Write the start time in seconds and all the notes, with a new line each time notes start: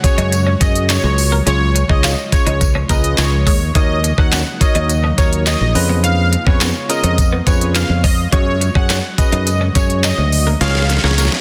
Already playing: C#3 F#3 G#3 F#4
0.04 C#4 F#4 G#4 C#5, muted clean electric guitar stroke, kick, closed hi-hat, tambourine
0.18 F#2 D#4, closed hi-hat
0.32 muted clean electric guitar stroke, closed hi-hat, tambourine
0.47 C#4
0.61 F#2 C#4 F#4 G#4 D#5, kick, closed hi-hat, tambourine
0.75 closed hi-hat
0.89 D#4 C#5, snare, clap, closed hi-hat, tambourine
1.04 C#2, muted clean electric guitar stroke
1.18 open hi-hat, tambourine
1.32 A#3
1.46 C#2 F3 G#3 C#4 F4 G#4 C#5, closed hi-hat
1.75 muted clean electric guitar stroke, closed hi-hat, tambourine
1.89 C#2 C#4 D#4 F4 G#4 C#5 D#5, kick
2.04 F4, snare, clap, closed hi-hat, tambourine
2.32 C#4 F4 G#4 C#5, muted clean electric guitar stroke, kick, closed hi-hat, tambourine
2.47 C#2 D#4, closed hi-hat
2.61 muted clean electric guitar stroke, kick, closed hi-hat, tambourine
2.75 C#4
2.89 C#2 A#3 C#4 F4 G#4 B4 D#5, kick, closed hi-hat, tambourine
3.04 closed hi-hat
3.18 C#2 C#5, snare, clap, closed hi-hat, tambourine
3.47 D#2 G#3 C#5, kick, open hi-hat, tambourine
3.75 D#2 F#3 A#3 D#4 F#4 A#4 C#5 D#5, kick, closed hi-hat, tambourine
4.04 muted clean electric guitar stroke, closed hi-hat, tambourine
4.18 D#2 C#4 D#4 F#4 A#4 C#5 F#5, kick
4.32 C#4, snare, clap, closed hi-hat, tambourine
4.61 D#4 F#4 A#4 C#5 D#5, muted clean electric guitar stroke, kick, closed hi-hat, tambourine
4.75 D#2 D#4, closed hi-hat
4.89 muted clean electric guitar stroke, closed hi-hat, tambourine
5.04 C#4
5.18 D#2 C#4 D#4 F#4 A#4 C#5, kick, closed hi-hat, tambourine
5.33 closed hi-hat
5.46 D#4 D#5, snare, clap, closed hi-hat, tambourine
5.61 A#1, muted clean electric guitar stroke
5.75 F2 G#3 B3 C#4 F4 G#4 B4, open hi-hat, tambourine
5.89 B3
6.04 C#4 F5, closed hi-hat
6.32 muted clean electric guitar stroke, closed hi-hat
6.46 F2 B3 C#4 F4 G#4 B4 C#5, kick
6.61 B3, snare, clap, closed hi-hat, tambourine
6.89 C#4 F4 G#4 A#4 D#5, muted clean electric guitar stroke, closed hi-hat, tambourine
7.04 F2 C#4, closed hi-hat
7.18 muted clean electric guitar stroke, kick, closed hi-hat, tambourine
7.33 B3
7.46 F2 B3 C#4 F4 G#4 B4 C#5, kick, closed hi-hat, tambourine
7.61 closed hi-hat
7.75 F5, snare, clap, closed hi-hat, tambourine
7.90 F2
8.04 C#4 D#5, kick, open hi-hat, tambourine
8.32 F#2 F#3 C#4 F#4 G#4 C#5, kick, closed hi-hat
8.61 muted clean electric guitar stroke, closed hi-hat, tambourine
8.75 F#2 C#4 F#4 G#4 C#5 F#5, kick
8.90 C#4, snare, clap, closed hi-hat, tambourine
9.18 C#4 F#4 G#4 B4 D#5, muted clean electric guitar stroke, kick, closed hi-hat, tambourine
9.32 F#2 D#4, closed hi-hat
9.47 muted clean electric guitar stroke, closed hi-hat, tambourine
9.61 C#4
9.75 F#2 C#4 F#4 G#4 C#5, kick, closed hi-hat, tambourine
9.90 closed hi-hat
10.03 D#4 D#5, snare, clap, closed hi-hat, tambourine
10.18 D2, muted clean electric guitar stroke
10.32 open hi-hat, tambourine
10.47 A#3
10.61 C#2 C#3 F3 G#3 C#4 F4 G#4 C#5 F5, snare, closed hi-hat, tambourine
10.68 snare
10.75 snare
10.82 snare
10.89 muted clean electric guitar stroke, snare, closed hi-hat, tambourine
10.97 snare
11.03 C#2 A#3 C#4 F4 G#4 C#5, snare
11.11 snare
11.18 A#3, snare, closed hi-hat, tambourine
11.25 snare
11.32 snare